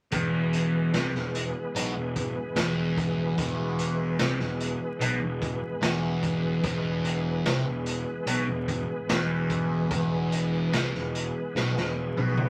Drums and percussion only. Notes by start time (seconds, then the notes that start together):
0.12 kick, closed hi-hat
0.53 closed hi-hat
0.94 snare, closed hi-hat
1.15 snare
1.35 closed hi-hat
1.76 closed hi-hat
2.16 kick, closed hi-hat
2.56 snare, closed hi-hat
2.97 kick, closed hi-hat
3.38 kick, closed hi-hat
3.79 closed hi-hat
4.19 snare, closed hi-hat
4.40 snare
4.60 closed hi-hat
5.01 closed hi-hat
5.42 kick, closed hi-hat
5.82 snare, closed hi-hat
6.23 kick, closed hi-hat
6.64 kick, closed hi-hat
7.05 closed hi-hat
7.46 snare, closed hi-hat
7.86 closed hi-hat
8.27 closed hi-hat
8.68 kick, closed hi-hat
9.09 snare, closed hi-hat
9.50 kick, closed hi-hat
9.91 kick, closed hi-hat
10.32 closed hi-hat
10.73 snare, closed hi-hat
10.95 snare
11.15 closed hi-hat
11.56 snare
11.77 snare
12.17 high tom
12.37 mid tom